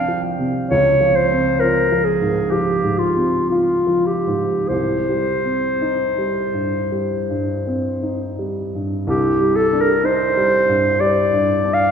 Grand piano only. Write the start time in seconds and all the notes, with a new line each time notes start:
Already playing: C2 C3 F3 C4 D4
0.08 F3
0.39 C3
0.71 C#2
1.01 F3
1.31 C4
1.62 F4
1.92 F3
2.21 G#2
2.52 F3
2.83 G#2
3.16 C4
3.52 F4
3.87 F3
4.27 G#2
4.70 C2
5.09 G3
5.45 C4
5.81 D#4
6.18 G3
6.54 G2
6.92 G3
7.30 G2
7.67 C4
8.02 D#4
8.39 G3
8.75 G2
9.07 C2
9.41 G3
9.72 D4
10.03 D#4
10.37 G3
10.69 G2
11.01 G3
11.33 G2
11.65 D4